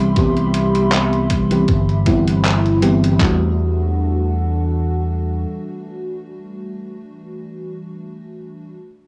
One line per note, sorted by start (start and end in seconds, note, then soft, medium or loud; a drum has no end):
0.00 0.12 C2 medium
0.00 0.16 E3 medium
0.00 0.16 G3 medium
0.00 0.17 B3 medium
0.00 0.17 C4 medium
0.00 0.17 G4 medium
0.00 3.16 G4 medium
0.00 3.16 E5 medium
0.00 3.16 B5 medium
0.00 3.16 C6 medium
0.16 1.64 C2 loud
0.16 0.38 E3 medium
0.16 0.38 G3 medium
0.16 0.38 B3 medium
0.16 0.39 C4 medium
0.16 0.39 G4 medium
0.16 kick loud
0.16 closed hi-hat medium
0.37 closed hi-hat soft
0.54 closed hi-hat medium
0.75 closed hi-hat medium
0.92 clap loud
0.92 closed hi-hat medium
1.13 closed hi-hat soft
1.30 kick medium
1.30 closed hi-hat loud
1.50 2.02 E3 medium
1.50 2.03 G3 medium
1.50 2.03 B3 medium
1.50 2.03 C4 medium
1.50 2.03 G4 medium
1.50 closed hi-hat medium
1.68 2.01 G1 medium
1.68 kick loud
1.68 closed hi-hat medium
1.89 closed hi-hat soft
2.06 3.16 G1 medium
2.06 2.78 E3 medium
2.06 2.78 G3 medium
2.06 2.78 B3 medium
2.06 2.79 C4 medium
2.06 2.79 E4 loud
2.06 kick loud
2.06 closed hi-hat medium
2.28 closed hi-hat medium
2.45 clap loud
2.45 closed hi-hat medium
2.66 closed hi-hat soft
2.82 3.15 E3 medium
2.82 3.15 G3 medium
2.82 3.15 B3 medium
2.82 3.15 C4 medium
2.82 3.15 G4 loud
2.82 closed hi-hat medium
3.04 closed hi-hat medium
3.18 5.44 E2 loud
3.18 7.25 E3 medium
3.18 7.26 G3 medium
3.18 7.27 A3 medium
3.18 7.01 D4 medium
3.18 7.29 D4 medium
3.18 7.00 A4 medium
3.18 7.00 F#5 medium
3.18 kick loud
3.18 clap medium
3.22 7.30 F#4 medium